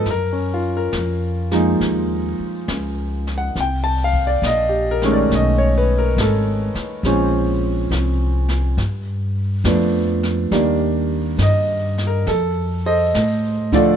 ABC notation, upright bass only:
X:1
M:4/4
L:1/8
Q:"Swing" 1/4=69
K:Gblyd
V:1 name="Upright bass" clef=bass
G,,2 F,,2 E,, z D,,2 | C,,2 B,,,2 =B,,,2 ^G,,, z | B,,,2 C,,2 =G,,2 F,,2 | E,,2 =G,,2 F,,2 =A,,2 |]